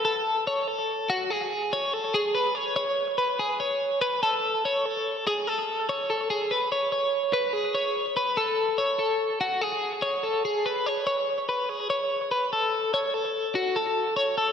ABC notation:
X:1
M:5/4
L:1/8
Q:1/4=145
K:Alyd
V:1 name="Clean electric guitar"
A2 c A2 F G2 c A | G B c c2 B G c2 B | A2 c A2 G A2 c A | G B c c2 B G c2 B |
A2 c A2 F G2 c A | G B c c2 B G c2 B | A2 c A2 F A2 c A |]